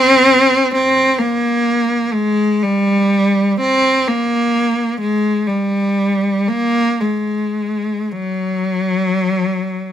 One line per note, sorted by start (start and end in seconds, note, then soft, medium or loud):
0.00 0.72 C4 loud
0.74 1.20 C4 loud
1.18 2.14 A#3 loud
2.13 2.63 G#3 loud
2.63 3.59 G3 loud
3.60 4.06 C4 loud
4.07 5.01 A#3 loud
5.01 5.48 G#3 loud
5.47 6.49 G3 medium
6.48 7.01 A#3 loud
7.01 8.11 G#3 medium
8.12 9.92 F#3 medium